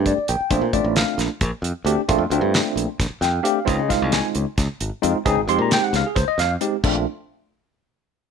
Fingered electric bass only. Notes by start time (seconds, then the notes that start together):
Already playing: G2
0.18 muted fingered electric bass stroke
0.29 A#1
0.41 muted fingered electric bass stroke
0.51 A#1
0.61 A#2
0.73 A1
0.84 A1
1.18 A#1
1.41 A#1
1.62 F2
1.85 D2
1.98 muted fingered electric bass stroke
2.09 A#1
2.18 F2
2.30 D2
2.41 G2
2.76 A#1
3.00 A#1
3.21 F2
3.68 C#2
3.79 C#3
3.90 C2
4.02 C2
4.35 C#2
4.58 C#2
4.81 G#1
5.04 F2
5.14 muted fingered electric bass stroke
5.26 C#2
5.35 G#1
5.48 F2
5.58 A#2
5.93 C#2
6.16 C#2
6.28 muted fingered electric bass stroke
6.38 F2
6.84 A#1